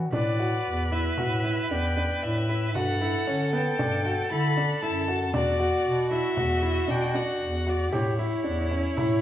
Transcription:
0.00 0.15 E3 medium
0.12 0.58 A2 medium
0.12 0.33 D4 medium
0.12 2.77 B4 medium
0.12 0.94 D5 medium
0.12 frame drum medium
0.39 0.79 F#4 medium
0.66 1.10 E2 medium
0.92 1.12 E4 medium
0.92 1.69 E5 medium
1.17 1.63 A2 medium
1.17 1.38 F#4 medium
1.17 frame drum medium
1.44 1.64 E4 medium
1.70 2.15 E2 medium
1.70 1.91 D4 medium
1.70 2.25 G5 medium
1.97 2.37 D4 medium
2.22 2.76 A2 medium
2.22 2.75 E5 medium
2.22 frame drum soft
2.49 2.69 E4 medium
2.75 3.19 G2 medium
2.75 2.95 F#4 medium
2.75 5.36 A4 loud
2.75 3.49 F#5 medium
2.75 frame drum soft
3.01 3.21 E4 medium
3.27 3.71 D3 medium
3.27 3.47 C#4 medium
3.53 3.73 B3 medium
3.53 4.27 G5 medium
3.78 4.23 G2 medium
3.78 3.99 D4 medium
3.78 frame drum medium
4.05 4.25 F#4 medium
4.31 4.75 D3 loud
4.31 4.51 E4 medium
4.31 4.79 B5 loud
4.56 4.77 D4 medium
4.56 frame drum soft
4.82 5.35 F#2 medium
4.82 5.02 E4 medium
4.82 5.31 A5 medium
4.82 frame drum soft
5.08 5.28 F#4 medium
5.08 frame drum soft
5.34 5.73 E2 medium
5.34 5.53 D4 medium
5.34 7.92 F#4 medium
5.34 6.08 D5 medium
5.34 frame drum medium
5.60 5.99 F#4 medium
5.86 6.30 B2 medium
6.11 6.31 E4 medium
6.11 6.92 E5 medium
6.36 6.81 E2 medium
6.36 6.56 F#4 medium
6.36 frame drum medium
6.62 6.82 E4 medium
6.88 7.34 B2 loud
6.88 7.08 D4 medium
6.88 7.17 G5 medium
7.14 7.54 D4 medium
7.14 7.71 F#5 medium
7.14 frame drum soft
7.41 7.95 E2 medium
7.41 frame drum soft
7.67 7.87 F#4 medium
7.67 7.94 D5 medium
7.67 frame drum soft
7.92 8.38 A2 medium
7.92 9.21 E4 medium
7.92 8.12 G4 medium
7.92 9.21 C#5 medium
7.92 frame drum medium
8.19 8.39 E4 medium
8.44 8.90 E2 medium
8.44 8.64 D4 medium
8.71 8.91 C#4 medium
8.97 9.21 A2 medium
8.97 9.17 E4 medium
8.97 frame drum medium

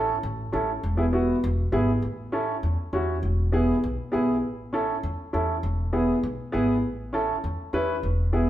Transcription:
0.00 0.12 A1 medium
0.00 0.14 C#4 medium
0.00 0.15 E4 medium
0.00 0.15 A4 loud
0.23 0.47 A1 loud
0.52 0.77 A1 medium
0.52 0.69 C#4 medium
0.52 0.69 E4 medium
0.52 0.69 A4 loud
0.83 1.32 E1 loud
0.97 1.03 B3 medium
0.97 1.03 E4 medium
0.97 1.04 G#4 medium
1.13 1.34 B3 medium
1.13 1.34 E4 medium
1.13 1.35 F#4 medium
1.44 1.68 E1 loud
1.72 1.97 G#1 medium
1.72 1.89 B3 medium
1.72 1.89 E4 medium
1.72 1.89 G#4 loud
2.02 2.51 A1 medium
2.32 2.54 C#4 medium
2.32 2.54 E4 medium
2.32 2.54 A4 medium
2.63 2.75 E2 medium
2.93 3.24 E2 medium
2.93 3.14 C#4 medium
2.93 3.14 E4 medium
2.93 3.15 F#4 medium
3.23 3.71 E1 loud
3.52 3.74 B3 medium
3.52 3.74 E4 medium
3.52 3.75 G#4 loud
3.84 3.96 B1 loud
4.12 4.44 B1 medium
4.12 4.34 B3 medium
4.12 4.34 E4 medium
4.12 4.34 G#4 loud
4.44 4.92 A1 loud
4.73 4.94 C#4 medium
4.73 4.95 E4 medium
4.73 4.95 A4 medium
5.03 5.15 E2 loud
5.33 5.65 E2 medium
5.33 5.54 C#4 medium
5.33 5.54 E4 medium
5.33 5.55 A4 medium
5.63 6.11 E1 loud
5.93 6.14 B3 medium
5.93 6.14 E4 medium
5.93 6.14 G#4 medium
6.23 6.35 B1 loud
6.52 6.84 G#1 medium
6.52 6.74 B3 medium
6.52 6.74 E4 medium
6.52 6.74 G#4 loud
6.84 7.31 A1 loud
7.13 7.34 C#4 medium
7.13 7.34 E4 medium
7.13 7.35 A4 medium
7.44 7.56 E2 medium
7.73 8.05 E2 medium
7.73 7.94 C#4 medium
7.73 7.94 E4 medium
7.73 7.95 B4 loud
8.03 8.50 E1 medium
8.33 8.50 B3 medium
8.33 8.50 E4 medium
8.33 8.50 G#4 medium

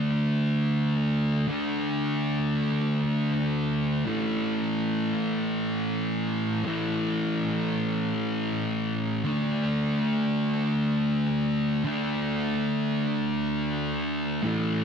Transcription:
0.00 1.46 D3 medium
0.00 1.49 A3 medium
0.00 1.47 D4 medium
1.48 4.05 D3 medium
1.48 4.07 A3 medium
1.48 4.06 D4 medium
4.06 6.63 A2 medium
4.06 6.64 E3 medium
4.06 6.67 A3 medium
6.64 9.23 A2 medium
6.64 9.24 E3 medium
6.64 9.24 A3 medium
9.25 11.83 D3 medium
9.25 11.86 A3 medium
9.25 11.85 D4 medium
11.84 14.43 D3 medium
11.84 14.44 A3 medium
11.84 14.45 D4 medium
14.43 14.84 A2 medium
14.43 14.84 E3 medium
14.43 14.84 A3 medium

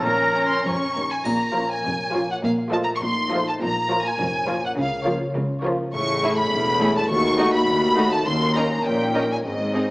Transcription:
0.00 1.19 A#2 soft
0.00 3.17 F3 medium
0.00 1.54 A#3 soft
0.00 1.84 C#4 soft
0.00 3.90 F4 soft
0.04 0.53 A#1 medium
0.04 0.52 A#2 medium
0.04 0.93 C#4 soft
0.04 0.64 A#4 medium
0.04 0.63 A#5 medium
0.35 0.57 A#5 medium
0.47 0.66 C6 medium
0.65 1.13 F1 medium
0.65 0.73 F2 medium
0.65 1.10 C#6 medium
0.95 1.04 D#2 soft
0.95 1.18 A#5 soft
1.12 1.26 G#5 medium
1.25 1.73 A#1 medium
1.25 1.73 A#2 medium
1.25 2.42 A#2 soft
1.25 1.70 A#5 medium
1.25 triangle soft
1.55 1.77 F3 medium
1.55 2.13 A#3 soft
1.55 1.67 C#4 soft
1.55 1.77 F4 soft
1.55 1.67 F4 soft
1.55 1.77 A#4 soft
1.55 1.77 C#5 soft
1.72 2.28 G#5 medium
1.85 2.31 F1 medium
1.85 2.31 F2 medium
1.85 2.46 C#4 soft
2.14 2.36 F3 soft
2.14 2.46 A#3 soft
2.14 2.26 C#4 soft
2.14 2.36 F4 medium
2.14 2.26 F4 soft
2.14 2.36 A#4 soft
2.14 2.36 C#5 soft
2.31 2.36 F#5 soft
2.43 2.90 A#1 medium
2.43 3.60 A#2 soft
2.43 2.90 A#2 medium
2.43 2.52 F5 medium
2.72 2.94 F3 soft
2.72 3.31 A3 soft
2.72 2.84 A3 soft
2.72 2.94 F4 medium
2.72 2.85 F4 soft
2.72 2.95 A4 soft
2.72 2.95 D#5 soft
2.72 2.77 A5 medium
2.84 2.88 A#5 medium
2.95 3.02 C#6 medium
3.02 3.48 A#1 medium
3.02 3.49 A#2 medium
3.02 3.63 D#4 soft
3.02 3.46 C6 medium
3.31 3.53 F3 medium
3.31 3.63 A3 soft
3.31 3.43 A3 soft
3.31 3.53 F4 medium
3.31 3.43 F4 soft
3.31 3.54 A4 soft
3.31 3.54 D#5 soft
3.48 3.53 A5 medium
3.61 4.07 A#1 medium
3.61 4.07 A#2 medium
3.61 4.80 A#2 soft
3.61 4.04 A#5 medium
3.90 4.12 F3 medium
3.90 4.47 A#3 soft
3.90 4.01 A#3 soft
3.90 4.12 F4 medium
3.90 4.01 F4 soft
3.90 4.12 A#4 medium
3.90 4.12 C#5 medium
4.05 4.63 G#5 medium
4.19 4.66 F1 medium
4.19 4.66 F2 medium
4.19 5.06 C#4 soft
4.48 4.70 F3 medium
4.48 5.96 A#3 soft
4.48 4.60 A#3 soft
4.48 4.70 F4 medium
4.48 4.60 F4 soft
4.48 4.70 A#4 medium
4.48 4.70 C#5 medium
4.65 4.70 F#5 medium
4.77 5.24 C#2 medium
4.77 5.23 C#3 medium
4.77 5.97 C#3 medium
4.77 5.07 F5 medium
5.06 5.28 F3 medium
5.06 5.18 A#3 soft
5.06 5.64 C#4 soft
5.06 5.28 F4 medium
5.06 5.18 F4 soft
5.06 5.28 A#4 medium
5.06 5.28 C#5 medium
5.35 5.81 C#2 medium
5.35 5.81 C#3 medium
5.35 5.96 F4 soft
5.64 5.86 F3 medium
5.64 5.76 A#3 medium
5.64 8.54 C#4 soft
5.64 5.86 F4 medium
5.64 5.76 F4 soft
5.64 5.86 A#4 soft
5.64 5.86 C#5 medium
5.94 6.42 A1 medium
5.94 6.42 A2 medium
5.94 7.12 A2 medium
5.94 8.22 A3 medium
5.94 7.06 G#4 medium
5.94 6.35 C#6 medium
6.22 6.31 A3 soft
6.22 6.80 A3 soft
6.22 6.31 E4 medium
6.22 6.30 G#4 soft
6.22 6.30 C#5 soft
6.38 6.96 B5 medium
6.51 7.00 E1 medium
6.51 7.00 E2 medium
6.51 7.12 E4 soft
6.80 6.88 A3 soft
6.80 8.28 A3 soft
6.80 6.89 E4 soft
6.80 6.88 G#4 soft
6.80 6.88 C#5 soft
6.97 7.10 A5 medium
7.09 7.58 D#2 medium
7.09 8.25 D#3 medium
7.09 8.26 F#4 medium
7.09 7.52 C#6 medium
7.38 7.47 A3 soft
7.38 7.96 D#4 soft
7.38 7.47 D#4 soft
7.38 7.46 F#4 soft
7.38 7.46 D#5 soft
7.53 8.10 B5 medium
7.67 8.16 D#2 medium
7.67 8.28 F#4 soft
7.97 8.05 A3 soft
7.97 8.84 D#4 soft
7.97 8.05 D#4 soft
7.97 8.06 F#4 soft
7.97 8.06 D#5 soft
8.12 8.26 A5 medium
8.26 8.75 D#2 medium
8.26 9.47 D#3 medium
8.26 9.44 A#3 soft
8.26 9.42 C#4 soft
8.26 8.55 C6 medium
8.55 8.63 C#4 soft
8.55 9.13 C#4 soft
8.55 8.64 D#4 soft
8.55 8.64 A#4 soft
8.55 8.64 D#5 soft
8.55 8.84 A#5 medium
8.84 9.35 A#1 soft
8.84 9.34 A#2 soft
8.84 9.91 D#4 soft
8.84 9.30 G5 medium
9.14 9.47 C#4 soft
9.14 9.23 C#4 soft
9.14 9.22 D#4 soft
9.14 9.23 A#4 soft
9.14 9.23 D#5 soft
9.31 9.37 G#5 soft
9.44 9.91 G#1 soft
9.44 9.91 G#2 soft
9.44 9.91 G#3 soft
9.44 9.91 C4 soft
9.44 9.91 D#5 soft
9.75 9.91 C4 soft
9.75 9.83 C4 soft
9.75 9.83 D#4 soft
9.75 9.83 G#4 soft
9.75 9.83 D#5 soft

